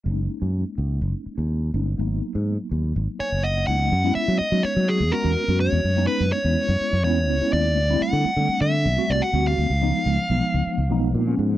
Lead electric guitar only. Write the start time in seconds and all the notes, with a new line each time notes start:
3.20 C#5
3.44 D#5
3.67 F#5
4.15 E5
4.38 D#5
4.63 C#5
4.88 G#4
5.12 A#4
5.60 C#5
6.07 B4
6.32 C#5
7.04 C#5
7.53 D5
8.02 F#5
8.62 E5
9.10 D5
9.22 F#5
9.47 F5